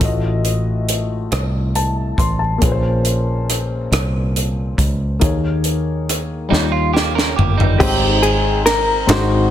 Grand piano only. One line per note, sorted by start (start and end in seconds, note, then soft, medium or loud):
0.00 1.27 A2 medium
0.00 2.56 A3 medium
0.00 2.57 F4 soft
0.00 2.58 F#4 medium
0.05 2.59 D#5 medium
1.75 2.16 A5 medium
2.19 2.39 C6 medium
2.39 2.81 A5 medium
2.58 3.88 A#2 medium
2.58 5.15 A#3 medium
2.58 5.17 C#4 medium
2.63 5.18 G#4 medium
2.63 2.70 B4 medium
2.72 5.22 C5 medium
5.20 6.47 D#3 medium
5.20 6.50 A#3 medium
5.20 6.49 D#4 medium
5.20 6.51 G#4 medium
5.20 6.51 C#5 medium
6.49 7.76 D#3 medium
6.49 7.79 G3 medium
6.49 7.79 D#4 medium
6.49 7.81 F4 medium
6.49 7.81 C#5 medium
7.78 9.06 G#2 medium
7.78 9.05 G#3 medium
7.78 9.05 C4 medium
7.78 9.07 D#4 medium
7.78 9.10 G5 medium
7.83 9.09 C5 medium
9.07 9.50 G#2 medium
9.07 9.50 G#3 medium
9.07 9.50 C4 medium
9.07 9.50 D#4 medium
9.07 9.50 F#4 medium
9.07 9.50 C5 medium